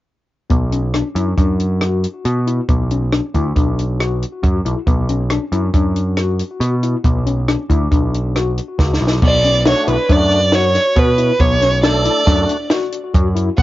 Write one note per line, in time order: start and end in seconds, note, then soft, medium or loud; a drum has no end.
0.50 1.01 B1 medium
0.50 0.63 B3 medium
0.50 kick medium
0.50 closed hi-hat medium
0.72 0.85 C#4 medium
0.72 closed hi-hat soft
0.94 1.07 D4 medium
0.94 cross-stick medium
0.94 closed hi-hat medium
1.15 1.33 F#2 medium
1.15 1.28 E4 medium
1.15 closed hi-hat medium
1.37 2.05 F#2 medium
1.37 1.62 D4 medium
1.37 kick medium
1.37 closed hi-hat medium
1.59 closed hi-hat soft
1.81 2.06 F#4 medium
1.81 cross-stick medium
1.81 closed hi-hat medium
2.04 closed hi-hat medium
2.25 2.59 B2 medium
2.25 2.38 F#4 medium
2.25 closed hi-hat medium
2.47 2.60 E4 medium
2.47 closed hi-hat soft
2.69 3.19 B1 medium
2.69 2.81 B3 medium
2.69 kick medium
2.69 closed hi-hat medium
2.91 3.04 C#4 medium
2.91 closed hi-hat soft
3.12 3.25 D4 medium
3.12 cross-stick medium
3.12 closed hi-hat medium
3.34 3.52 D2 medium
3.34 3.47 E4 medium
3.34 kick medium
3.34 closed hi-hat soft
3.56 4.23 B1 medium
3.56 3.81 D4 medium
3.56 kick medium
3.56 closed hi-hat medium
3.79 closed hi-hat soft
4.00 4.24 F#4 medium
4.00 cross-stick medium
4.00 closed hi-hat medium
4.22 closed hi-hat soft
4.43 4.60 F#2 medium
4.43 4.56 F#4 medium
4.43 kick medium
4.43 closed hi-hat medium
4.65 4.74 B1 medium
4.65 4.78 E4 medium
4.65 closed hi-hat soft
4.87 5.37 B1 medium
4.87 5.00 B3 medium
4.87 kick medium
4.87 closed hi-hat medium
5.09 5.21 C#4 medium
5.09 closed hi-hat soft
5.30 5.44 D4 medium
5.30 cross-stick medium
5.30 closed hi-hat medium
5.52 5.69 F#2 medium
5.52 5.65 E4 medium
5.52 closed hi-hat medium
5.74 6.41 F#2 medium
5.74 5.99 D4 medium
5.74 kick medium
5.74 closed hi-hat medium
5.96 closed hi-hat soft
6.17 6.43 F#4 medium
6.17 cross-stick medium
6.17 closed hi-hat medium
6.39 closed hi-hat medium
6.60 6.94 B2 medium
6.60 6.74 F#4 medium
6.60 closed hi-hat medium
6.83 6.96 E4 medium
6.83 closed hi-hat soft
7.04 7.55 B1 medium
7.04 7.17 B3 medium
7.04 kick medium
7.04 closed hi-hat medium
7.26 7.39 C#4 medium
7.26 closed hi-hat soft
7.48 7.61 D4 medium
7.48 cross-stick medium
7.48 closed hi-hat medium
7.70 7.87 D2 medium
7.70 7.82 E4 medium
7.70 kick medium
7.70 closed hi-hat soft
7.91 8.59 B1 medium
7.91 8.16 D4 medium
7.91 kick medium
7.91 closed hi-hat medium
8.14 closed hi-hat soft
8.36 8.60 F#4 medium
8.36 cross-stick medium
8.36 closed hi-hat medium
8.58 closed hi-hat medium
8.79 8.99 C#2 medium
8.79 8.91 F#4 medium
8.79 kick medium
8.79 snare soft
8.94 snare medium
9.00 9.21 B1 medium
9.00 9.13 E4 medium
9.07 snare medium
9.22 9.73 B1 medium
9.22 9.35 B3 medium
9.22 9.65 D5 loud
9.22 kick medium
9.22 crash medium
9.44 9.57 C#4 medium
9.44 closed hi-hat medium
9.65 9.96 A3 medium
9.65 9.78 D4 medium
9.65 9.97 D4 medium
9.65 9.97 F#4 medium
9.65 9.88 C#5 medium
9.65 snare loud
9.65 closed hi-hat medium
9.87 9.96 B1 medium
9.87 10.00 E4 medium
9.87 10.13 B4 medium
9.87 closed hi-hat medium
10.09 10.77 F#2 medium
10.09 10.40 A3 medium
10.09 10.34 D4 medium
10.09 10.40 D4 soft
10.09 10.41 F#4 medium
10.09 10.57 D5 medium
10.09 kick medium
10.09 closed hi-hat medium
10.31 closed hi-hat soft
10.52 10.78 F#4 medium
10.52 11.00 C#5 medium
10.52 snare medium
10.52 closed hi-hat medium
10.75 snare soft
10.75 closed hi-hat medium
10.96 11.30 B2 medium
10.96 11.09 F#4 medium
10.96 11.42 B4 medium
10.96 kick medium
10.96 closed hi-hat medium
11.18 11.31 E4 medium
11.18 closed hi-hat medium
11.40 12.07 B1 medium
11.40 11.53 B3 medium
11.40 11.83 C#5 medium
11.40 kick medium
11.40 closed hi-hat medium
11.62 11.74 C#4 medium
11.62 snare soft
11.62 closed hi-hat medium
11.82 12.24 A3 medium
11.82 12.24 D4 medium
11.82 11.96 D4 medium
11.82 12.45 A4 medium
11.82 12.67 D5 medium
11.82 snare loud
11.82 closed hi-hat medium
12.05 12.18 E4 medium
12.05 closed hi-hat medium
12.25 12.44 F#2 medium
12.25 12.57 A3 medium
12.25 12.57 D4 medium
12.25 12.52 D4 medium
12.25 12.58 F#4 medium
12.25 kick medium
12.25 snare soft
12.25 closed hi-hat medium
12.49 closed hi-hat medium
12.70 12.96 F#4 medium
12.70 snare medium
12.70 closed hi-hat medium
12.92 closed hi-hat medium
13.14 13.48 F#2 medium
13.14 13.27 F#4 medium
13.14 kick medium
13.14 closed hi-hat medium
13.35 13.48 E4 medium
13.35 closed hi-hat medium
13.58 13.62 B1 medium
13.58 13.62 B3 medium
13.58 13.62 F#5 medium
13.58 kick medium
13.58 closed hi-hat medium